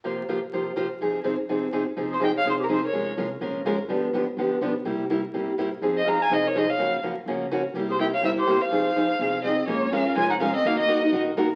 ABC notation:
X:1
M:4/4
L:1/8
Q:"Swing" 1/4=249
K:Fm
V:1 name="Violin"
z8 | z8 | z c g f c B c d- | d z6 z |
z8 | z8 | z e b a e d e f- | f z6 z |
z c g f =e c2 f- | f6 e2 | [K:Bbm] d2 f2 a g f e | f e3 z4 |]
V:2 name="Clarinet"
z8 | z8 | z A e d A G A B- | B z6 z |
z8 | z8 | z c f f c B c d- | d z6 z |
z A =e d c G2 c- | c6 C2 | [K:Bbm] B,2 D2 F E D C | B, B,3 z4 |]
V:3 name="Steel-string acoustic guitar"
[C,F,B,FGc] z [C,F,B,FGc] z [C,F,B,FGc] z [C,F,B,FGc] z | [C,F,CEA] z [C,F,CEA] z [C,F,CEA] z [C,F,CEA] z | [F,CEA] z [F,CEA] z [F,CEA] z [F,CEA] z | [F,A,DFB] z [F,A,DFB] z [F,A,DFB] z [F,A,DFB] z |
[=D,F,=B,=DG] z [D,F,B,DG] z [D,F,B,DG] z [D,F,B,DG] z | [C,G,B,=EG] z [C,G,B,EG] z [C,G,B,EG] z [C,G,B,EG] z | [F,CEA] z [F,CEA] z [F,CEA] z [F,CEA] z | [D,F,B,D_G] z [D,F,B,DG] z [D,F,B,DG] z [D,F,B,DG] z |
[C,G,B,=EG] z [C,G,B,EG] z [C,G,B,EG] z [C,G,B,EG] z | [F,CEA] z [F,CEA] z [F,CEA] z [F,CEA] z | [K:Bbm] [F,A,DFB] z [F,A,DFB] [DFB] [F,A,DFB] z [F,A,DFB] z | [E,B,EGB] z [E,B,EGB] [EGB] [E,B,EGB] z [E,B,EGB] z |]
V:4 name="Upright bass" clef=bass
z8 | z8 | F,,,4 C,,4 | F,,,2 C,,2 B,,,2 A,,,2 |
G,,,2 G,,,2 =A,,,2 =B,,,2 | C,,4 G,,,4 | F,,4 C,,4 | _G,,4 D,,4 |
C,,4 G,,,4 | F,,4 C,,4 | [K:Bbm] B,,,4 F,,,4 | E,,4 B,,,4 |]